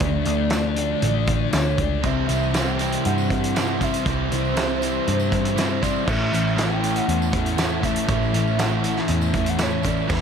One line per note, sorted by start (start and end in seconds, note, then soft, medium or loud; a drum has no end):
0.00 0.24 D2 loud
0.00 0.49 D3 medium
0.00 2.03 D3 medium
0.00 2.04 F3 medium
0.00 2.04 A3 medium
0.00 0.51 A3 medium
0.00 2.05 D4 medium
0.00 0.53 D4 medium
0.00 1.53 D5 loud
0.00 kick loud
0.00 closed hi-hat medium
0.25 0.93 D2 loud
0.25 closed hi-hat medium
0.50 1.00 D3 medium
0.50 0.77 A3 medium
0.50 0.74 D4 medium
0.50 snare loud
0.50 closed hi-hat medium
0.50 tambourine loud
0.75 1.02 A3 medium
0.75 1.03 D4 medium
0.75 closed hi-hat medium
1.01 1.47 A1 medium
1.01 1.50 D3 medium
1.01 1.52 A3 medium
1.01 1.53 D4 medium
1.01 closed hi-hat medium
1.27 kick loud
1.27 closed hi-hat medium
1.51 1.76 D2 medium
1.51 2.01 D3 medium
1.51 1.79 A3 medium
1.51 1.76 D4 medium
1.51 1.82 C#5 loud
1.51 snare loud
1.51 closed hi-hat medium
1.51 tambourine medium
1.77 2.01 C#2 medium
1.77 2.03 A3 medium
1.77 2.02 D4 medium
1.77 2.07 D5 loud
1.77 kick medium
1.77 closed hi-hat medium
2.03 2.26 C2 medium
2.03 2.53 C3 medium
2.03 2.54 E3 medium
2.03 2.30 G3 medium
2.03 2.29 C4 medium
2.03 2.27 E4 loud
2.03 2.58 E5 loud
2.03 kick loud
2.03 closed hi-hat medium
2.03 tambourine soft
2.28 2.96 C2 medium
2.28 2.55 G3 medium
2.28 2.55 C4 medium
2.28 2.56 E4 medium
2.28 closed hi-hat medium
2.28 tambourine medium
2.43 tambourine soft
2.54 4.06 C3 medium
2.54 3.54 E3 medium
2.54 2.82 G3 medium
2.54 2.80 C4 medium
2.54 2.79 E4 medium
2.54 3.05 G5 loud
2.54 snare loud
2.54 closed hi-hat medium
2.54 tambourine medium
2.79 3.55 G3 medium
2.79 3.55 C4 medium
2.79 3.57 E4 medium
2.79 closed hi-hat medium
2.79 tambourine medium
2.92 closed hi-hat medium
3.05 3.94 G2 loud
3.05 3.85 F#5 loud
3.05 closed hi-hat medium
3.18 tambourine medium
3.29 3.55 G3 medium
3.29 3.57 C4 medium
3.29 kick medium
3.29 closed hi-hat medium
3.29 tambourine soft
3.43 closed hi-hat medium
3.43 tambourine soft
3.55 4.03 C3 medium
3.55 4.06 E3 medium
3.55 3.83 G3 medium
3.55 3.81 C4 medium
3.55 3.80 E4 medium
3.55 snare loud
3.55 closed hi-hat medium
3.55 tambourine medium
3.69 tambourine soft
3.80 4.07 G3 medium
3.80 4.07 C4 medium
3.80 4.09 E4 medium
3.80 4.10 E5 medium
3.80 kick medium
3.80 closed hi-hat medium
3.80 tambourine medium
3.94 closed hi-hat medium
3.94 tambourine soft
4.06 4.28 C2 medium
4.06 4.55 C3 medium
4.06 4.56 E3 medium
4.06 4.32 G3 medium
4.06 4.31 C4 medium
4.06 4.30 E4 loud
4.06 5.57 C5 loud
4.06 kick loud
4.06 closed hi-hat medium
4.06 tambourine soft
4.31 4.98 C2 medium
4.31 4.56 G3 medium
4.31 4.57 C4 medium
4.31 4.58 E4 medium
4.31 closed hi-hat medium
4.31 tambourine medium
4.45 tambourine soft
4.56 5.07 C3 medium
4.56 5.55 E3 medium
4.56 4.83 G3 medium
4.56 4.81 C4 loud
4.56 4.80 E4 loud
4.56 snare loud
4.56 closed hi-hat medium
4.56 tambourine medium
4.81 5.56 G3 medium
4.81 5.57 C4 medium
4.81 5.59 E4 medium
4.81 closed hi-hat medium
4.81 tambourine medium
5.07 5.96 G2 loud
5.07 closed hi-hat medium
5.20 tambourine medium
5.30 5.56 G3 medium
5.30 5.57 C4 medium
5.30 kick medium
5.30 closed hi-hat medium
5.45 closed hi-hat medium
5.45 tambourine soft
5.55 6.05 C3 medium
5.55 6.06 E3 medium
5.55 5.83 G3 medium
5.55 5.81 C4 medium
5.55 5.84 C5 medium
5.55 snare loud
5.55 closed hi-hat medium
5.55 tambourine medium
5.59 5.81 E4 medium
5.70 tambourine soft
5.81 6.07 G3 medium
5.81 6.06 C4 medium
5.81 6.09 E4 medium
5.81 6.09 D5 medium
5.81 kick medium
5.81 closed hi-hat medium
5.81 tambourine medium
5.96 tambourine soft
6.06 6.30 A1 medium
6.06 6.55 A2 medium
6.06 6.56 E3 loud
6.06 6.34 A3 medium
6.06 6.32 C#4 medium
6.06 6.31 E4 medium
6.06 6.62 E5 loud
6.06 kick loud
6.06 crash loud
6.06 tambourine soft
6.31 6.99 A1 medium
6.31 6.58 E3 medium
6.31 6.57 A3 medium
6.31 6.58 C#4 medium
6.31 6.58 E4 medium
6.31 closed hi-hat medium
6.31 tambourine medium
6.47 tambourine soft
6.56 8.07 A2 medium
6.56 7.57 E3 loud
6.56 6.83 A3 loud
6.56 6.82 C#4 medium
6.56 6.80 E4 medium
6.56 snare loud
6.56 closed hi-hat medium
6.56 tambourine medium
6.60 6.98 G5 loud
6.80 7.57 A3 medium
6.80 7.58 C#4 medium
6.80 7.59 E4 medium
6.80 closed hi-hat medium
6.80 tambourine medium
6.96 7.86 F#5 loud
6.96 closed hi-hat medium
7.08 7.97 E2 medium
7.08 closed hi-hat medium
7.22 tambourine medium
7.32 7.58 E3 medium
7.32 7.59 A3 medium
7.32 kick medium
7.32 closed hi-hat medium
7.32 tambourine soft
7.46 closed hi-hat medium
7.46 tambourine soft
7.57 8.06 A2 medium
7.57 8.08 E3 medium
7.57 7.84 A3 medium
7.57 7.83 C#4 medium
7.57 7.82 E4 medium
7.57 snare loud
7.57 closed hi-hat medium
7.57 tambourine medium
7.72 tambourine soft
7.82 8.08 E3 medium
7.82 8.08 A3 medium
7.82 8.09 C#4 medium
7.82 8.10 E4 medium
7.82 8.09 E5 loud
7.82 kick medium
7.82 closed hi-hat medium
7.82 tambourine medium
7.96 closed hi-hat medium
7.96 tambourine soft
8.08 8.31 A1 loud
8.08 8.56 A2 medium
8.08 8.58 E3 medium
8.08 8.35 A3 medium
8.08 8.33 C#4 loud
8.08 8.32 E4 loud
8.08 8.60 E5 medium
8.08 kick loud
8.08 closed hi-hat medium
8.08 tambourine soft
8.22 tambourine soft
8.33 9.00 A1 loud
8.33 8.59 E3 medium
8.33 8.58 A3 medium
8.33 8.58 C#4 medium
8.33 8.60 E4 medium
8.33 closed hi-hat medium
8.33 tambourine medium
8.47 tambourine soft
8.57 9.08 A2 medium
8.57 9.57 E3 medium
8.57 8.85 A3 medium
8.57 8.83 C#4 loud
8.57 8.83 E4 loud
8.57 9.00 F#5 loud
8.57 snare loud
8.57 closed hi-hat medium
8.57 tambourine medium
8.72 tambourine soft
8.83 9.58 A3 medium
8.83 9.59 C#4 medium
8.83 9.60 E4 medium
8.83 closed hi-hat medium
8.83 tambourine medium
8.97 9.10 E5 medium
8.97 snare soft
8.97 tambourine soft
9.08 9.97 E2 medium
9.08 9.51 E5 medium
9.08 closed hi-hat medium
9.08 tambourine soft
9.21 tambourine medium
9.33 9.59 E3 medium
9.33 9.60 A3 medium
9.33 kick medium
9.33 closed hi-hat medium
9.46 9.63 F#5 loud
9.46 closed hi-hat medium
9.58 10.07 A2 medium
9.58 10.07 E3 medium
9.58 9.84 A3 medium
9.58 9.83 C#4 medium
9.58 9.82 E4 medium
9.58 9.88 C#5 medium
9.58 snare loud
9.58 closed hi-hat medium
9.58 tambourine medium
9.71 tambourine soft
9.82 10.11 E3 medium
9.82 10.08 A3 medium
9.82 10.08 C#4 medium
9.82 10.10 E4 medium
9.82 kick medium
9.82 closed hi-hat medium
9.82 tambourine medium
9.86 10.12 D5 medium
9.97 tambourine soft
10.07 10.21 E1 loud
10.07 10.21 E2 loud
10.07 10.21 B2 medium
10.07 10.21 E3 medium
10.07 10.21 G3 medium
10.07 10.21 B3 loud
10.07 10.21 E4 loud
10.07 10.21 E5 loud
10.07 kick loud
10.07 tambourine soft
10.07 crash medium